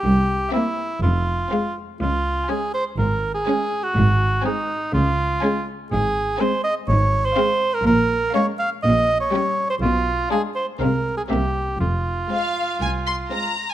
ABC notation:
X:1
M:4/4
L:1/16
Q:1/4=122
K:Fm
V:1 name="Violin section"
z4 =e4 z4 f4 | z4 a4 z4 a4 | z4 a4 z4 a4 | z4 a4 z4 f4 |
z4 f4 z4 g4 | z4 f4 f4 =e4 | z4 f4 a2 c'2 b3 a |]
V:2 name="Cor anglais"
G4 =E4 F6 z2 | F4 A2 c2 B3 A4 _G- | _G4 E4 F6 z2 | A4 c2 e2 d3 c4 B |
B4 d2 f2 e3 d4 c | F4 ^G2 c2 B3 A =G4 | F12- F2 z2 |]
V:3 name="Violin section"
z4 C4 z4 C4 | z4 D4 z4 D4 | z4 C4 z4 D4 | z4 C4 z4 C4 |
z4 D4 z4 D4 | z4 =D4 C4 C4 | z4 C4 z4 C4 |]
V:4 name="Viola section" clef=bass
z4 B,4 z4 A,4 | z4 A,4 z4 A,4 | z4 A,4 z4 A,4 | z4 A,4 z4 A,4 |
z4 A,4 z4 G,4 | z4 ^G,4 A,4 B,4 | z4 A,4 z4 A,4 |]
V:5 name="Cello section" clef=bass
C,,4 z4 F,,4 z4 | D,,4 z4 A,,4 z4 | A,,4 z4 D,4 z4 | A,,4 z4 A,,4 z4 |
B,,4 z4 B,,4 z4 | =B,,4 z4 C,4 C,4 | F,,4 z4 C,,4 z4 |]
V:6 name="Double bass section" clef=bass
C,,4 z4 F,,,4 z4 | D,,4 z4 A,,,4 z4 | A,,,4 z4 D,,4 z4 | A,,,4 z4 A,,,4 z4 |
B,,,4 z4 B,,,4 z4 | =B,,,4 z4 C,,4 C,,4 | F,,,4 z4 C,,4 z4 |]